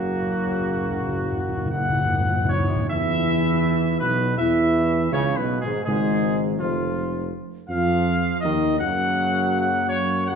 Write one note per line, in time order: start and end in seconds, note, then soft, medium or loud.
0.00 2.51 F#1 medium
0.00 2.52 C#3 medium
0.00 2.06 F#3 medium
0.00 2.52 A#3 medium
0.00 1.67 F#4 medium
0.06 0.13 F#2 soft
0.14 0.21 F#2 soft
0.22 0.29 F#2 soft
0.30 0.36 F#2 soft
0.46 0.52 F#2 soft
0.53 0.59 F#2 soft
0.60 0.67 F#2 soft
0.68 0.75 F#2 soft
0.76 0.83 F#2 soft
0.85 0.90 F#2 soft
0.92 0.99 F#2 medium
1.01 1.07 F#2 medium
1.08 1.15 F#2 medium
1.16 1.23 F#2 soft
1.24 1.32 F#2 medium
1.33 1.39 F#2 medium
1.40 1.48 F#2 medium
1.49 1.56 F#2 medium
1.57 1.64 F#2 medium
1.65 1.72 F#2 medium
1.71 1.79 F#2 medium
1.71 2.46 F#5 medium
1.81 1.88 F#2 medium
1.89 1.95 F#2 medium
1.96 2.04 F#2 medium
2.05 2.12 F#2 medium
2.13 2.19 F#2 medium
2.20 2.27 F#2 medium
2.28 2.35 F#2 medium
2.37 2.43 F#2 medium
2.45 2.51 F#2 medium
2.49 2.59 F#2 medium
2.49 2.86 C#5 medium
2.60 2.67 F#2 medium
2.68 2.75 F#2 loud
2.76 2.84 F#2 medium
2.89 3.97 E2 medium
2.89 3.97 E3 loud
2.89 3.97 E4 loud
2.89 3.97 E5 loud
3.99 4.40 B1 medium
3.99 4.36 B2 medium
3.99 4.37 B3 medium
3.99 4.35 B4 loud
4.38 5.12 E2 medium
4.38 5.13 E3 medium
4.38 5.09 E4 medium
4.38 5.09 E5 loud
5.12 5.40 C#2 medium
5.12 5.35 C#3 loud
5.12 5.35 C#4 medium
5.12 5.36 C#5 loud
5.37 5.62 B1 medium
5.37 5.61 B2 medium
5.37 5.61 B3 medium
5.37 5.62 B4 medium
5.60 5.74 G#1 medium
5.60 5.85 G#2 medium
5.60 5.83 G#3 medium
5.60 5.84 G#4 medium
5.84 6.62 G#1 medium
5.84 6.56 G#2 medium
5.84 6.93 C#3 medium
5.84 6.55 G#3 medium
5.84 6.42 G#4 medium
6.59 7.33 F1 medium
6.59 7.29 F2 medium
6.59 7.28 F3 medium
6.59 7.29 F4 medium
7.69 8.38 F2 medium
7.69 8.38 F3 medium
7.69 8.39 F4 medium
7.69 8.38 F5 loud
8.41 8.77 D#2 medium
8.41 8.76 D#3 medium
8.41 8.77 D#4 medium
8.41 8.75 D#5 loud
8.78 10.35 F#2 medium
8.78 10.23 C#3 medium
8.78 10.23 F#3 medium
8.78 10.23 A#3 medium
8.78 10.23 F#4 medium
8.78 9.85 F#5 loud
9.89 10.24 C#5 loud
10.27 10.35 C#3 medium
10.27 10.35 F#3 medium
10.27 10.35 A#3 medium
10.27 10.35 F#4 medium
10.27 10.35 F#5 loud